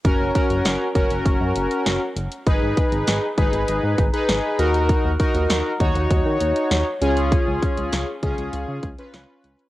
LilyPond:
<<
  \new Staff \with { instrumentName = "Analog polysynth" } { \time 4/4 \key fis \major \tempo 4 = 99 <cis' fis' ais'>8 <cis' fis' ais'>8. r16 <cis' fis' ais'>4.~ <cis' fis' ais'>16 r8. | <dis' gis' b'>4~ <dis' gis' b'>16 r16 <dis' gis' b'>4 r16 <dis' gis' b'>8. <dis' fis' ais'>8~ | <dis' fis' ais'>16 r16 <dis' fis' ais'>8. r16 <dis' fis' cis''>4.~ <dis' fis' cis''>16 r16 <cis' eis' gis'>8~ | <cis' eis' gis'>4~ <cis' eis' gis'>16 r16 <cis' eis' gis'>4 r16 <cis' eis' b'>4 r16 | }
  \new Staff \with { instrumentName = "Analog synth bass" } { \clef bass \time 4/4 \key fis \major fis,,16 fis,,16 r16 fis,,16 fis,,16 r16 fis,,16 fis,,16 fis,,16 fis,16 fis,,16 r16 fis,,16 r16 fis,,16 r16 | gis,,16 gis,,16 r16 gis,,16 gis,,16 r16 gis,,16 gis,,16 gis,,16 gis,16 gis,,16 r16 gis,,16 r16 dis,8~ | dis,16 dis,16 r16 dis,16 dis,16 r16 dis,16 dis,16 dis,16 dis16 dis,16 r16 dis,16 r16 cis,8~ | cis,16 cis,16 r16 cis,16 cis,16 r16 cis,16 cis,16 cis,16 cis16 cis,16 r16 cis,16 r16 cis,16 r16 | }
  \new DrumStaff \with { instrumentName = "Drums" } \drummode { \time 4/4 <hh bd>8 <hh bd>16 hh16 <hh sn>8 <hh bd>16 hh16 <hh bd>8 hh16 hh16 <hh sn>8 hh16 hh16 | <hh bd>8 <hh bd>16 hh16 <hh sn>8 <hh bd>16 hh16 hh8 <hh bd>16 hh16 <hh sn>8 hh16 hh16 | <hh bd>8 <hh bd>16 hh16 <hh sn>8 <hh bd>16 hh16 <hh bd>8 hh16 hh16 <hh sn>8 hh16 hh16 | <hh bd>8 <hh bd>16 hh16 <hh sn>8 <hh bd>16 hh16 hh8 <hh bd>16 hh16 <hh sn>8 hh16 hh16 | }
>>